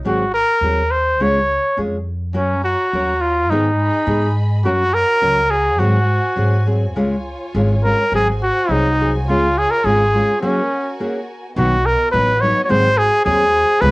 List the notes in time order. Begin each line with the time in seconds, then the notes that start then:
0.05 G#1 G#2 D#3 F#3 C4 F#4 G#4
0.34 A#4
0.61 D#2 F#3 C4 F#4 G#4
0.91 C5
1.19 C#2 C#3 G#3 C#4 F4 G#4 C#5
1.77 F2 G#3 C#4 F4 G#4
2.34 F#2 F#3 C#4 F#4 A#4 C#5 A#5
2.64 F#4
2.93 D#2 F#3 C#4 F#4 A#4
3.21 F4
3.50 G#2 D#3 G#3 B3 D#4 G#4 D#5 B5
4.06 G#2 G#3 B3 D#4 G#4
4.64 F#2 F#3 C#4 F#4 A#4 C#5 A#5
4.94 A#4
5.21 C#2 F#3 C#4 F#4 A#4
5.51 G#4
5.78 G#2 D#3 F#3 C4 F#4 G#4 C5 G#5
6.36 G#2 F#3 C4 F#4 G#4
6.66 F#3 C4 F#4 G#4
6.95 C#2 C#3 G#3 C#4 F4 G#4 C#5 G#5
7.54 G#1 G#3 C#4 F4 G#4
7.84 G#3 C#4 F4 G#4 A#4
8.11 G#1 G#2 D#3 F#3 C4 F#4 G#4 C5
8.43 F#4
8.69 C2 F#3 C4 D#4 F#4 G#4
9.00 F#3 C4 F#4 G#4
9.26 C#2 C#3 G#3 C#4 F4 G#4 C#5
9.58 G#4
9.71 A#4
9.84 G#1 G#3 C#4 F4 G#4
10.14 G#3 C#4 F4 G#4
10.41 F#3 A#3 C#4 F#4 G#4 A#4
11.00 A#3 C#4 F#4 G#4
11.55 B1 B2 D#3 F#3 B3 D#4 F#4 B4 D#5
11.86 A#4
12.11 A1 F#3 B3 D#4 B4
12.41 F#3 B3 D#4 B4 C#5
12.64 C#5
12.69 G#1 G#2 D#3 F#3 G#3 C4 F#4 G#4 C5
12.98 G#4
13.25 D#2 F#3 C4 F#4 G#4
13.81 C#2 C#3 G#3 B3 F4 G#4 B4 C#5